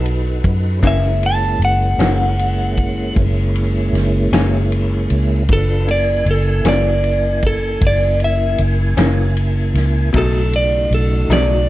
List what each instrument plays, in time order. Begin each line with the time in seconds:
Already playing: fingered electric bass B1, tonewheel organ D#4 F#4 A4 B4
0.06 ride
0.44 fingered electric bass F#2, kick, ride
0.79 clean electric guitar F#2, tonewheel organ G#3 A#3 C#4 E4
0.83 fingered electric bass F#1, clean electric guitar E3 A#3 C#4, kick, ride
0.87 electric slide guitar E5
1.23 electric slide guitar A5, ride
1.59 fingered electric bass F#1, ride
1.65 electric slide guitar F#5
1.98 fingered electric bass F#1, clean electric guitar F#2 E3 A#3 C#4, snare, ride
2.39 ride
2.78 kick, ride
3.16 fingered electric bass F#1, kick, ride
3.56 ride
3.93 fingered electric bass F#1, snare, ride
4.32 fingered electric bass F#1, clean electric guitar F#2 E3 A#3 C#4, snare, ride
4.72 ride
5.10 fingered electric bass C#2, ride
5.49 fingered electric bass F#1, tonewheel organ D4 F4 A4 B4, kick, ride
5.53 electric slide guitar A4
5.87 tonewheel organ C#3 A#3 E4 G#5, electric slide guitar D5, ride
6.26 fingered electric bass F#1, ride
6.31 electric slide guitar A4
6.65 fingered electric bass F#1, clean electric guitar F#2 E3 A#3 C#4, electric slide guitar D5, snare, ride
7.04 ride
7.43 electric slide guitar A4, kick, ride
7.81 fingered electric bass F#1, kick, ride
7.87 electric slide guitar D5
8.20 ride
8.24 electric slide guitar E5
8.58 fingered electric bass F#1, ride
8.97 fingered electric bass F#1, clean electric guitar F#2 E3 A#3 C#4, snare, ride
9.37 ride
9.74 fingered electric bass C#2, snare, ride
10.13 fingered electric bass B1, clean electric guitar B2 F#3 A3 D#4, tonewheel organ C#3 A3 D#4 F#4, kick, ride
10.18 electric slide guitar A4
10.53 electric slide guitar D5, ride
10.91 fingered electric bass B1, electric slide guitar A4, ride
11.29 fingered electric bass B1, clean electric guitar B2 F#3 A3 D#4, electric slide guitar D5, snare, ride